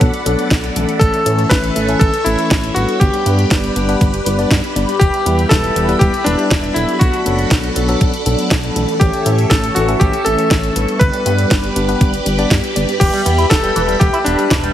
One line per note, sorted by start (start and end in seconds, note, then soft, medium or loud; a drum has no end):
0.00 0.11 B1 loud
0.00 0.11 F#3 medium
0.00 0.11 B3 medium
0.00 0.11 D4 medium
0.00 0.11 A4 medium
0.00 2.97 A4 medium
0.00 0.99 D5 medium
0.00 0.99 F#5 medium
0.00 0.97 B5 medium
0.00 kick loud
0.00 closed hi-hat medium
0.14 closed hi-hat soft
0.26 0.36 B1 medium
0.26 0.73 F#3 medium
0.26 0.73 B3 medium
0.26 0.73 D4 medium
0.26 0.73 A4 medium
0.26 closed hi-hat medium
0.39 closed hi-hat soft
0.51 0.70 B1 medium
0.51 kick loud
0.51 snare loud
0.51 closed hi-hat medium
0.64 closed hi-hat soft
0.76 0.86 B1 medium
0.76 1.23 E3 medium
0.76 1.23 A3 medium
0.76 1.23 C#4 medium
0.76 1.23 A4 medium
0.76 closed hi-hat medium
0.89 closed hi-hat soft
0.99 1.11 A1 loud
0.99 1.52 A4 loud
0.99 2.99 C#5 medium
0.99 2.99 E5 medium
0.99 2.99 C#6 medium
0.99 kick loud
0.99 closed hi-hat medium
1.14 closed hi-hat soft
1.26 1.45 A2 loud
1.26 1.73 E3 medium
1.26 1.73 A3 medium
1.26 1.73 C#4 medium
1.26 1.73 A4 medium
1.26 closed hi-hat medium
1.39 closed hi-hat soft
1.50 1.70 A1 medium
1.50 2.02 B4 loud
1.50 kick loud
1.50 snare loud
1.50 closed hi-hat medium
1.64 closed hi-hat soft
1.76 1.95 A1 medium
1.76 1.87 E3 medium
1.76 1.87 A3 medium
1.76 1.87 C#4 medium
1.76 1.87 A4 medium
1.76 closed hi-hat medium
1.88 2.11 E3 medium
1.88 2.11 A3 medium
1.88 2.11 C#4 medium
1.88 2.11 A4 loud
1.88 closed hi-hat soft
1.99 2.11 A1 loud
1.99 2.26 A4 loud
1.99 kick loud
1.99 closed hi-hat medium
2.14 closed hi-hat soft
2.24 2.36 A1 medium
2.24 2.73 E3 medium
2.24 2.73 A3 medium
2.24 2.73 C#4 medium
2.24 2.77 E4 medium
2.24 2.73 A4 loud
2.24 closed hi-hat medium
2.39 closed hi-hat soft
2.51 2.70 A1 medium
2.51 kick loud
2.51 snare loud
2.51 closed hi-hat medium
2.64 closed hi-hat soft
2.75 2.86 A1 medium
2.75 3.23 G3 medium
2.75 3.23 B3 medium
2.75 3.23 D4 medium
2.75 3.01 F#4 medium
2.75 3.23 B4 medium
2.75 closed hi-hat medium
2.89 closed hi-hat soft
3.00 3.11 G1 loud
3.00 3.96 G4 medium
3.00 6.97 G4 medium
3.00 4.99 B4 medium
3.00 4.99 D5 medium
3.00 8.97 B5 medium
3.00 kick loud
3.00 closed hi-hat medium
3.14 closed hi-hat soft
3.26 3.45 G2 loud
3.26 3.73 G3 medium
3.26 3.73 B3 medium
3.26 3.73 D4 medium
3.26 3.73 B4 medium
3.26 closed hi-hat medium
3.39 closed hi-hat soft
3.51 3.70 G1 medium
3.51 kick loud
3.51 snare loud
3.51 closed hi-hat medium
3.64 closed hi-hat soft
3.76 3.95 G1 medium
3.76 3.87 G3 medium
3.76 3.87 B3 medium
3.76 3.87 D4 medium
3.76 3.87 B4 medium
3.76 closed hi-hat medium
3.89 4.11 G3 medium
3.89 4.11 B3 medium
3.89 4.11 D4 medium
3.89 4.11 B4 loud
3.89 closed hi-hat soft
4.01 4.20 G1 medium
4.01 kick loud
4.01 closed hi-hat medium
4.14 closed hi-hat soft
4.26 4.45 G1 loud
4.26 4.37 G3 medium
4.26 4.37 B3 medium
4.26 4.37 D4 medium
4.26 4.37 B4 medium
4.26 closed hi-hat medium
4.39 4.61 G3 medium
4.39 4.61 B3 medium
4.39 4.61 D4 medium
4.39 4.61 D5 medium
4.39 closed hi-hat soft
4.51 4.61 G2 medium
4.51 kick loud
4.51 snare loud
4.51 closed hi-hat medium
4.64 closed hi-hat soft
4.76 4.86 G1 medium
4.76 4.90 G3 medium
4.76 4.90 B3 medium
4.76 4.90 D4 medium
4.76 4.90 D5 medium
4.76 closed hi-hat medium
4.89 closed hi-hat soft
4.99 5.11 E1 loud
4.99 5.47 G4 loud
4.99 6.99 B4 medium
4.99 6.99 E5 medium
4.99 kick loud
4.99 closed hi-hat medium
5.14 closed hi-hat soft
5.26 5.45 E2 medium
5.26 5.73 G3 medium
5.26 5.73 B3 medium
5.26 5.73 E4 medium
5.26 5.73 B4 medium
5.26 closed hi-hat medium
5.39 closed hi-hat soft
5.49 5.70 E1 medium
5.49 6.02 A4 loud
5.49 kick loud
5.49 snare loud
5.49 closed hi-hat medium
5.64 closed hi-hat soft
5.76 5.95 E1 medium
5.76 5.87 G3 medium
5.76 5.87 B3 medium
5.76 5.87 E4 medium
5.76 5.87 B4 medium
5.76 closed hi-hat medium
5.89 6.11 G3 medium
5.89 6.11 B3 medium
5.89 6.11 E4 medium
5.89 6.11 B4 loud
5.89 closed hi-hat soft
5.99 6.11 E1 loud
5.99 6.23 G4 loud
5.99 kick loud
5.99 closed hi-hat medium
6.14 closed hi-hat soft
6.24 6.36 E1 medium
6.24 6.73 G3 medium
6.24 6.73 B3 medium
6.24 6.77 D4 medium
6.24 6.73 E4 medium
6.24 6.73 B4 loud
6.24 closed hi-hat medium
6.39 closed hi-hat soft
6.51 6.70 E1 medium
6.51 kick loud
6.51 snare loud
6.51 closed hi-hat medium
6.64 closed hi-hat soft
6.74 6.86 E1 medium
6.74 7.23 F#3 medium
6.74 7.23 B3 medium
6.74 7.23 D4 medium
6.74 7.01 E4 medium
6.74 7.23 A4 medium
6.74 closed hi-hat medium
6.89 closed hi-hat soft
6.99 7.11 B1 medium
6.99 7.96 F#4 medium
6.99 10.97 A4 medium
6.99 8.99 D5 medium
6.99 8.99 F#5 medium
6.99 kick loud
6.99 closed hi-hat medium
7.14 closed hi-hat soft
7.26 7.45 F#1 loud
7.26 7.73 F#3 medium
7.26 7.73 B3 medium
7.26 7.73 D4 medium
7.26 7.73 A4 medium
7.26 closed hi-hat medium
7.39 closed hi-hat soft
7.51 7.70 B1 medium
7.51 kick loud
7.51 snare loud
7.51 closed hi-hat medium
7.64 closed hi-hat soft
7.76 7.95 B1 medium
7.76 7.87 F#3 medium
7.76 7.87 B3 medium
7.76 7.87 D4 medium
7.76 7.87 A4 medium
7.76 closed hi-hat medium
7.89 8.11 F#3 medium
7.89 8.11 B3 medium
7.89 8.11 D4 medium
7.89 8.11 A4 loud
7.89 closed hi-hat soft
8.01 8.11 B1 medium
8.01 kick loud
8.01 closed hi-hat medium
8.14 closed hi-hat soft
8.26 8.36 B1 medium
8.26 8.73 F#3 medium
8.26 8.73 B3 medium
8.26 8.73 D4 medium
8.26 8.73 A4 loud
8.26 closed hi-hat medium
8.39 closed hi-hat soft
8.51 8.70 B1 medium
8.51 kick loud
8.51 snare loud
8.51 closed hi-hat medium
8.64 closed hi-hat soft
8.76 8.86 B1 medium
8.76 9.23 E3 medium
8.76 9.23 A3 medium
8.76 9.23 C#4 medium
8.76 9.23 A4 medium
8.76 closed hi-hat medium
8.89 closed hi-hat soft
9.00 9.11 A1 loud
9.00 9.52 G4 medium
9.00 10.99 C#5 medium
9.00 10.99 E5 medium
9.00 10.99 C#6 medium
9.00 kick loud
9.00 closed hi-hat medium
9.13 closed hi-hat soft
9.26 9.45 A2 loud
9.26 9.73 E3 medium
9.26 9.73 A3 medium
9.26 9.73 C#4 medium
9.26 9.73 A4 medium
9.26 closed hi-hat medium
9.39 closed hi-hat soft
9.50 9.70 A1 medium
9.50 9.76 A4 medium
9.50 kick loud
9.50 snare loud
9.50 closed hi-hat medium
9.64 closed hi-hat soft
9.75 9.95 A1 medium
9.75 9.87 E3 medium
9.75 9.87 A3 medium
9.75 9.87 C#4 medium
9.75 10.01 F#4 medium
9.75 9.87 A4 medium
9.75 closed hi-hat medium
9.88 10.11 E3 medium
9.88 10.11 A3 medium
9.88 10.11 C#4 medium
9.88 10.11 A4 loud
9.88 closed hi-hat soft
10.00 10.11 A1 loud
10.00 10.24 G4 medium
10.00 kick loud
10.00 closed hi-hat medium
10.13 closed hi-hat soft
10.25 10.36 A1 medium
10.25 10.73 E3 medium
10.25 10.73 A3 medium
10.25 10.73 C#4 medium
10.25 11.03 A4 loud
10.25 10.73 A4 loud
10.25 closed hi-hat medium
10.39 closed hi-hat soft
10.51 10.70 A1 medium
10.51 kick loud
10.51 snare loud
10.51 closed hi-hat medium
10.63 closed hi-hat soft
10.76 10.86 A1 medium
10.76 11.23 G3 medium
10.76 11.23 B3 medium
10.76 11.23 D4 medium
10.76 11.23 B4 medium
10.76 closed hi-hat medium
10.88 closed hi-hat soft
10.99 11.11 G1 loud
10.99 14.73 G4 medium
10.99 12.46 B4 loud
10.99 14.73 B4 medium
10.99 12.99 D5 medium
10.99 14.73 B5 medium
10.99 kick loud
10.99 closed hi-hat medium
11.14 closed hi-hat soft
11.26 11.45 G2 loud
11.26 11.73 G3 medium
11.26 11.73 B3 medium
11.26 11.73 D4 medium
11.26 11.73 B4 medium
11.26 closed hi-hat loud
11.38 closed hi-hat soft
11.51 11.70 G1 medium
11.51 kick loud
11.51 snare loud
11.51 closed hi-hat medium
11.64 closed hi-hat soft
11.76 11.95 G1 medium
11.76 11.87 G3 medium
11.76 11.87 B3 medium
11.76 11.87 D4 medium
11.76 11.87 B4 medium
11.76 closed hi-hat medium
11.88 12.11 G3 medium
11.88 12.11 B3 medium
11.88 12.11 D4 medium
11.88 12.11 B4 loud
11.88 closed hi-hat soft
12.01 12.20 G1 medium
12.01 kick loud
12.01 closed hi-hat medium
12.14 closed hi-hat soft
12.26 12.45 G1 loud
12.26 12.37 G3 medium
12.26 12.37 B3 medium
12.26 12.37 D4 medium
12.26 12.37 B4 medium
12.26 closed hi-hat medium
12.38 12.61 G3 medium
12.38 12.61 B3 medium
12.38 12.61 D4 medium
12.38 12.61 D5 medium
12.38 closed hi-hat soft
12.51 12.61 G2 medium
12.51 kick loud
12.51 snare loud
12.51 closed hi-hat medium
12.64 closed hi-hat soft
12.76 12.86 G1 medium
12.76 12.90 G3 medium
12.76 12.90 B3 medium
12.76 12.90 D4 medium
12.76 12.90 D5 medium
12.76 closed hi-hat medium
12.89 closed hi-hat soft
13.00 13.11 E1 loud
13.00 13.08 E3 medium
13.00 13.47 G4 loud
13.00 14.73 E5 medium
13.00 kick loud
13.00 closed hi-hat medium
13.00 crash medium
13.13 13.21 G3 loud
13.13 closed hi-hat soft
13.26 13.45 E2 loud
13.26 13.33 B3 medium
13.26 closed hi-hat loud
13.38 13.45 E4 medium
13.38 closed hi-hat soft
13.50 13.70 E1 medium
13.50 13.55 B3 medium
13.50 14.02 A4 loud
13.50 kick loud
13.50 snare loud
13.50 closed hi-hat medium
13.63 13.70 G3 loud
13.63 closed hi-hat soft
13.76 13.95 E1 medium
13.76 13.80 E3 loud
13.76 closed hi-hat medium
13.88 13.96 G3 medium
13.88 closed hi-hat soft
14.00 14.11 E1 loud
14.00 14.08 B3 medium
14.00 14.24 G4 loud
14.00 kick loud
14.00 closed hi-hat medium
14.13 14.18 E4 loud
14.13 closed hi-hat soft
14.24 14.36 E1 medium
14.24 14.33 B3 medium
14.24 14.73 D4 medium
14.24 closed hi-hat medium
14.39 14.46 G3 medium
14.39 closed hi-hat soft
14.51 14.70 E1 medium
14.51 14.55 E3 medium
14.51 kick loud
14.51 snare loud
14.51 closed hi-hat medium
14.63 14.71 G3 medium
14.63 closed hi-hat soft